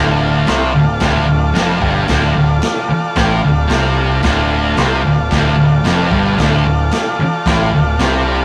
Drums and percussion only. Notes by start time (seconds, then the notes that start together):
0.47 snare, crash
1.00 kick, snare, crash
1.55 snare, crash
1.82 kick
2.08 kick, snare, crash
2.62 snare, crash
3.16 kick, snare, crash
3.70 snare, crash
4.23 kick, snare, crash
4.77 snare, crash
5.31 kick, snare, crash
5.85 snare, crash
6.12 kick
6.38 kick, snare, crash
6.91 snare, crash
7.46 kick, snare, crash
7.99 snare, crash